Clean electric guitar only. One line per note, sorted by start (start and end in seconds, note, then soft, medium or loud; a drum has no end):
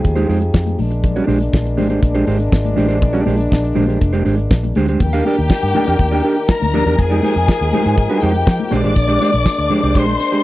0.16 0.27 G#3 medium
0.16 0.28 D#4 medium
0.16 0.28 G4 medium
0.16 0.29 C5 medium
0.29 0.42 G#3 medium
0.29 0.41 D#4 medium
0.29 0.40 G4 medium
0.29 0.40 C5 medium
0.41 muted clean electric guitar stroke soft
0.55 muted clean electric guitar stroke soft
0.67 muted clean electric guitar stroke soft
0.91 muted clean electric guitar stroke soft
1.03 muted clean electric guitar stroke soft
1.16 1.26 G#3 medium
1.16 1.26 D4 medium
1.16 1.27 G4 medium
1.16 1.28 D5 medium
1.27 1.40 G#3 medium
1.27 1.40 D4 medium
1.27 1.40 G4 medium
1.27 1.40 C5 medium
1.41 muted clean electric guitar stroke soft
1.52 muted clean electric guitar stroke soft
1.65 muted clean electric guitar stroke soft
1.77 1.90 G#3 medium
1.77 1.90 D4 medium
1.77 1.89 G4 medium
1.77 1.89 C5 medium
1.90 2.01 G#3 soft
1.90 2.01 D4 soft
1.90 2.02 G4 medium
1.90 2.02 C5 medium
2.02 muted clean electric guitar stroke soft
2.14 2.25 G#3 medium
2.14 2.26 D4 medium
2.14 2.26 G4 medium
2.14 2.27 C5 medium
2.27 2.40 G#3 medium
2.27 2.40 D4 medium
2.27 2.40 G4 medium
2.27 2.39 C5 medium
2.40 muted clean electric guitar stroke soft
2.52 muted clean electric guitar stroke soft
2.64 muted clean electric guitar stroke soft
2.76 2.89 G#3 medium
2.76 2.88 D4 medium
2.76 2.88 G4 medium
2.76 2.87 C5 medium
2.88 2.99 G#3 soft
2.88 3.00 D4 medium
2.88 3.00 G4 medium
2.88 3.01 C5 medium
3.13 3.24 G#3 medium
3.13 3.25 D4 medium
3.13 3.25 G4 medium
3.13 3.26 D5 medium
3.26 3.39 G#3 medium
3.26 3.37 D4 medium
3.26 3.37 G4 medium
3.26 3.37 C5 medium
3.38 muted clean electric guitar stroke soft
3.50 muted clean electric guitar stroke soft
3.63 muted clean electric guitar stroke soft
3.75 3.87 G#3 medium
3.75 3.87 D4 medium
3.75 3.87 G4 medium
3.75 3.86 C5 medium
3.87 3.99 G#3 soft
3.87 4.00 D4 soft
3.87 4.00 G4 medium
3.87 4.00 C5 medium
4.13 4.23 G#3 medium
4.13 4.24 D4 medium
4.13 4.25 G4 medium
4.13 4.25 C5 medium
4.25 4.38 G#3 medium
4.25 4.37 D4 medium
4.25 4.37 G4 medium
4.25 4.36 C5 medium
4.38 muted clean electric guitar stroke soft
4.51 muted clean electric guitar stroke soft
4.63 muted clean electric guitar stroke soft
4.76 4.89 G#3 medium
4.76 4.89 D4 medium
4.76 4.88 G4 medium
4.76 4.88 C5 medium
4.89 5.01 G#3 medium
4.89 5.00 D4 medium
4.89 5.01 G4 medium
4.89 5.01 C5 medium
5.02 muted clean electric guitar stroke soft
5.13 5.25 D4 medium
5.13 5.25 G4 medium
5.13 5.26 A#4 medium
5.13 5.27 F5 medium
5.26 5.38 D4 medium
5.26 5.38 G4 medium
5.26 5.38 A#4 medium
5.26 5.37 D5 medium
5.39 muted clean electric guitar stroke soft
5.51 muted clean electric guitar stroke soft
5.62 muted clean electric guitar stroke soft
5.75 5.87 D4 medium
5.75 5.87 G4 medium
5.75 5.87 A#4 medium
5.75 5.86 D5 medium
5.87 5.98 D4 medium
5.87 5.98 G4 medium
5.87 5.99 A#4 medium
5.87 5.99 D5 medium
5.99 muted clean electric guitar stroke soft
6.11 6.23 D4 medium
6.11 6.23 G4 medium
6.11 6.24 A#4 medium
6.11 6.24 D5 medium
6.24 6.37 D4 medium
6.24 6.37 G4 medium
6.24 6.37 A#4 medium
6.24 6.36 D5 medium
6.37 muted clean electric guitar stroke soft
6.48 muted clean electric guitar stroke soft
6.61 muted clean electric guitar stroke soft
6.74 6.86 D4 medium
6.74 6.86 G4 medium
6.74 6.86 A#4 medium
6.74 6.85 D5 medium
6.86 6.98 D4 soft
6.86 6.97 G4 medium
6.86 6.98 A#4 medium
6.86 6.98 D5 medium
6.98 muted clean electric guitar stroke soft
7.10 7.21 G#3 medium
7.10 7.22 D#4 medium
7.10 7.22 G4 medium
7.10 7.24 D5 medium
7.22 7.36 G#3 medium
7.22 7.36 D#4 medium
7.22 7.36 G4 medium
7.22 7.36 C5 medium
7.61 muted clean electric guitar stroke soft
7.73 7.86 G#3 medium
7.73 7.85 D#4 medium
7.73 7.85 G4 medium
7.73 7.84 C5 medium
7.86 7.96 G#3 soft
7.86 7.97 D#4 medium
7.86 7.97 G4 soft
7.86 7.97 C5 medium
8.10 8.21 G#3 medium
8.10 8.21 D#4 medium
8.10 8.22 G4 medium
8.10 8.22 C5 medium
8.22 8.35 G#3 medium
8.22 8.34 D#4 medium
8.22 8.33 G4 medium
8.22 8.33 C5 medium
8.34 muted clean electric guitar stroke soft
8.46 muted clean electric guitar stroke soft
8.59 muted clean electric guitar stroke soft
8.71 8.84 G#3 medium
8.71 8.84 D4 medium
8.71 8.83 G4 medium
8.71 8.82 C5 medium
8.84 8.95 G#3 medium
8.84 8.95 D4 medium
8.84 8.96 G4 medium
8.84 8.96 C5 medium
9.08 9.20 G#3 medium
9.08 9.20 D4 medium
9.08 9.21 G4 medium
9.08 9.22 D5 medium
9.21 9.34 G#3 medium
9.21 9.32 D4 medium
9.21 9.32 G4 medium
9.21 9.31 C5 medium
9.32 muted clean electric guitar stroke medium
9.45 muted clean electric guitar stroke soft
9.58 muted clean electric guitar stroke soft
9.70 9.84 G#3 medium
9.70 9.83 D4 medium
9.70 9.83 G4 medium
9.70 9.82 C5 medium
9.83 9.94 G#3 soft
9.83 9.95 D4 medium
9.83 9.95 G4 medium
9.83 9.96 C5 medium
9.95 10.12 G#3 medium
9.95 10.07 D4 medium
9.95 10.07 G4 medium
9.95 10.06 C5 medium
10.08 muted clean electric guitar stroke soft
10.20 muted clean electric guitar stroke soft
10.32 10.43 G#3 medium
10.32 10.43 D4 medium
10.32 10.43 G4 medium
10.32 10.43 C5 medium